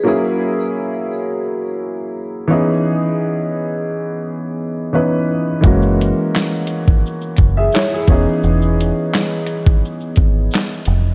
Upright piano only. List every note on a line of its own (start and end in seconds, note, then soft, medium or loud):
0.04 2.45 F#3 medium
0.04 2.45 A#3 medium
0.04 2.46 C#4 medium
0.04 2.46 E4 medium
0.08 2.47 G#4 medium
2.48 4.89 E3 medium
2.48 4.89 B3 medium
2.48 4.90 C#4 medium
2.48 4.91 D#4 medium
2.52 4.91 G#4 medium
4.93 5.59 E3 medium
4.93 5.63 B3 soft
4.93 5.63 C#4 medium
4.93 5.64 D#4 soft
4.93 5.64 B4 medium
5.61 8.02 E3 medium
5.61 8.03 G#3 medium
5.61 8.04 A#3 medium
5.65 8.04 C#4 medium
5.65 7.36 F#4 medium
7.57 7.72 G#4 medium
7.57 7.72 E5 medium
7.74 7.92 E4 medium
7.74 7.92 C#5 medium
7.94 8.11 G#4 medium
8.07 10.82 E3 medium
8.07 10.83 B3 medium
8.07 10.84 C#4 medium
8.07 10.84 D#4 medium
8.12 10.85 G#4 medium